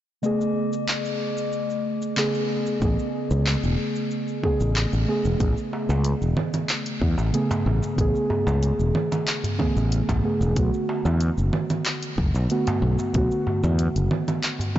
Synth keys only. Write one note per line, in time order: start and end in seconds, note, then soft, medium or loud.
0.22 2.13 C#3 medium
0.22 2.14 A3 medium
0.22 2.14 B3 medium
0.22 2.15 G#4 medium
2.16 2.78 C#3 medium
2.16 2.78 A3 medium
2.16 2.79 B3 medium
2.16 2.79 G#4 medium
2.80 4.39 C#3 medium
2.80 4.40 A3 medium
2.80 4.40 B3 medium
2.84 4.41 G#4 medium
4.43 5.04 C#3 medium
4.43 5.04 A3 medium
4.43 5.05 B3 medium
4.43 5.05 G#4 loud
5.07 5.36 C#3 medium
5.07 5.36 A3 medium
5.07 5.37 B3 medium
5.07 5.37 G#4 medium
5.38 7.29 C#3 medium
5.38 7.30 A3 medium
5.38 7.30 B3 medium
5.38 7.31 G#4 medium
7.32 7.94 C#3 medium
7.32 7.94 A3 medium
7.32 7.95 B3 medium
7.32 7.95 G#4 medium
7.96 9.55 C#3 medium
7.96 9.56 A3 medium
7.96 9.56 B3 medium
8.01 9.57 G#4 loud
9.58 10.20 C#3 medium
9.58 10.20 A3 medium
9.58 10.21 B3 medium
9.58 10.21 G#4 medium
10.23 10.52 C#3 medium
10.23 10.53 A3 medium
10.23 10.53 B3 medium
10.23 10.53 G#4 medium
10.55 12.46 D3 medium
10.55 12.46 A3 medium
10.55 12.47 B3 medium
10.59 12.48 F#4 medium
12.50 13.11 D3 medium
12.50 13.11 A3 medium
12.50 13.11 B3 medium
12.50 13.12 F#4 medium
13.13 14.71 D3 medium
13.13 14.72 A3 medium
13.13 14.73 B3 medium
13.13 14.73 F#4 loud